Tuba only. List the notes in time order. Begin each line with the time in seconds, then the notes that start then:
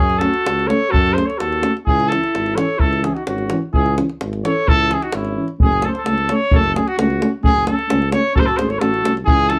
0.00 F#2
0.47 C#2
0.93 F#2
1.41 D#2
1.88 C#2
2.35 G#1
2.82 C#2
3.28 G#1
3.74 C#2
4.21 G#1
4.67 C#2
5.14 G#1
5.61 F#1
6.07 C#2
6.53 F#1
6.99 C#2
7.45 F#1
7.91 C#2
8.37 F#1
8.59 G#1
8.82 A1
9.05 C2
9.28 C#2